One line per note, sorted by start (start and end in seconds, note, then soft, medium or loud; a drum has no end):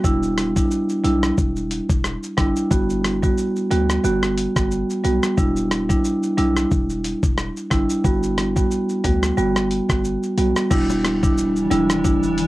0.04 0.60 E1 loud
0.04 0.26 G3 medium
0.04 0.26 D4 medium
0.04 0.26 E4 loud
0.04 kick loud
0.04 shaker medium
0.23 shaker medium
0.38 cross-stick medium
0.38 closed hi-hat medium
0.38 shaker soft
0.56 1.01 G3 medium
0.56 1.01 D4 medium
0.56 1.01 E4 medium
0.56 kick loud
0.56 shaker medium
0.71 shaker medium
0.89 shaker medium
1.04 1.32 B1 medium
1.04 1.35 G3 medium
1.04 1.35 D4 medium
1.04 1.35 E4 medium
1.04 closed hi-hat medium
1.04 shaker soft
1.23 cross-stick medium
1.23 shaker medium
1.38 1.81 E1 loud
1.38 kick medium
1.38 shaker medium
1.56 shaker medium
1.71 closed hi-hat medium
1.71 shaker soft
1.90 2.17 E1 medium
1.90 kick loud
1.90 shaker medium
2.04 cross-stick loud
2.04 shaker medium
2.23 shaker soft
2.37 2.53 G1 medium
2.37 2.59 G3 medium
2.37 2.59 D4 medium
2.37 2.59 E4 medium
2.37 kick medium
2.37 cross-stick loud
2.37 closed hi-hat medium
2.37 shaker soft
2.56 shaker medium
2.71 3.26 G1 loud
2.71 2.92 G3 medium
2.71 2.93 B3 medium
2.71 2.93 F#4 loud
2.71 kick loud
2.71 shaker medium
2.90 shaker medium
3.04 cross-stick medium
3.04 closed hi-hat medium
3.04 shaker soft
3.23 3.67 G3 medium
3.23 3.68 B3 medium
3.23 3.68 F#4 medium
3.23 kick loud
3.23 shaker medium
3.38 shaker medium
3.56 shaker medium
3.71 3.99 D2 medium
3.71 4.02 G3 medium
3.71 4.02 B3 medium
3.71 4.02 F#4 medium
3.71 closed hi-hat medium
3.71 shaker soft
3.90 cross-stick medium
3.90 shaker medium
4.04 4.47 G1 loud
4.04 4.52 G3 medium
4.04 4.52 B3 medium
4.04 4.52 F#4 loud
4.04 shaker medium
4.23 cross-stick loud
4.23 shaker medium
4.38 closed hi-hat medium
4.38 shaker soft
4.56 4.84 G1 medium
4.56 4.75 G3 medium
4.56 4.75 B3 medium
4.56 4.75 F#4 medium
4.56 kick loud
4.56 cross-stick loud
4.56 shaker medium
4.71 shaker medium
4.90 shaker soft
5.04 5.20 B1 loud
5.04 5.26 G3 medium
5.04 5.26 B3 medium
5.04 5.26 F#4 medium
5.04 closed hi-hat medium
5.04 shaker soft
5.23 cross-stick medium
5.23 shaker medium
5.37 5.93 E1 loud
5.37 5.59 G3 medium
5.37 5.59 D4 medium
5.37 5.59 E4 loud
5.37 kick loud
5.37 shaker medium
5.56 shaker medium
5.71 cross-stick medium
5.71 closed hi-hat medium
5.71 shaker soft
5.89 6.34 G3 medium
5.89 6.34 D4 medium
5.89 6.34 E4 medium
5.89 kick loud
5.89 shaker medium
6.04 shaker medium
6.23 shaker medium
6.38 6.65 B1 medium
6.38 6.69 G3 medium
6.38 6.69 D4 medium
6.38 6.69 E4 medium
6.38 closed hi-hat medium
6.38 shaker soft
6.56 cross-stick medium
6.56 shaker medium
6.71 7.14 E1 loud
6.71 kick medium
6.71 shaker medium
6.90 shaker medium
7.04 closed hi-hat medium
7.04 shaker soft
7.23 7.51 E1 medium
7.23 kick loud
7.23 shaker medium
7.38 cross-stick loud
7.38 shaker medium
7.57 shaker medium
7.71 7.87 G1 medium
7.71 7.93 G3 medium
7.71 7.93 D4 medium
7.71 7.93 E4 medium
7.71 kick medium
7.71 cross-stick medium
7.71 closed hi-hat medium
7.71 shaker soft
7.90 shaker medium
8.04 8.60 G1 loud
8.04 8.26 G3 medium
8.04 8.26 B3 medium
8.04 8.26 F#4 loud
8.04 kick loud
8.04 shaker medium
8.23 shaker medium
8.38 cross-stick medium
8.38 closed hi-hat medium
8.38 shaker soft
8.56 9.01 G3 medium
8.56 9.01 B3 medium
8.56 9.01 F#4 medium
8.56 kick loud
8.56 shaker medium
8.71 shaker medium
8.89 shaker medium
9.04 9.32 D2 medium
9.04 9.35 G3 medium
9.04 9.35 B3 medium
9.04 9.35 F#4 medium
9.04 kick medium
9.04 closed hi-hat medium
9.04 shaker medium
9.23 cross-stick medium
9.23 shaker medium
9.37 9.81 G1 loud
9.37 9.85 G3 medium
9.37 9.85 B3 medium
9.37 9.85 F#4 loud
9.37 shaker medium
9.56 cross-stick loud
9.56 shaker medium
9.71 closed hi-hat medium
9.71 shaker soft
9.89 10.17 G1 medium
9.89 10.08 G3 medium
9.89 10.08 B3 medium
9.89 10.08 F#4 medium
9.89 kick loud
9.89 cross-stick loud
9.89 shaker medium
10.04 shaker medium
10.23 shaker medium
10.38 10.53 B1 medium
10.38 10.59 G3 medium
10.38 10.59 B3 medium
10.38 10.60 F#4 medium
10.38 closed hi-hat medium
10.38 shaker soft
10.56 cross-stick medium
10.56 shaker medium
10.71 11.67 E1 loud
10.71 12.47 E3 medium
10.71 11.18 G3 medium
10.71 12.47 G3 medium
10.71 12.47 D4 medium
10.71 11.19 D4 medium
10.71 11.19 E4 loud
10.71 kick loud
10.71 crash loud
10.71 high bongo medium
10.71 shaker medium
10.90 high bongo medium
10.90 shaker medium
11.04 cross-stick medium
11.04 closed hi-hat medium
11.04 high bongo medium
11.04 shaker medium
11.23 11.41 G3 medium
11.23 11.41 D4 medium
11.23 11.42 E4 medium
11.23 kick loud
11.23 shaker medium
11.38 shaker medium
11.56 shaker medium
11.71 12.06 E1 medium
11.71 11.93 G3 medium
11.71 11.93 D4 medium
11.71 11.93 E4 medium
11.71 closed hi-hat medium
11.71 low bongo medium
11.71 shaker soft
11.90 cross-stick medium
11.90 shaker medium
12.04 12.47 F#1 loud
12.04 12.47 G3 medium
12.04 12.47 D4 medium
12.04 12.47 E4 loud
12.04 kick medium
12.04 high bongo medium
12.04 shaker medium
12.23 shaker medium
12.38 closed hi-hat medium
12.38 shaker medium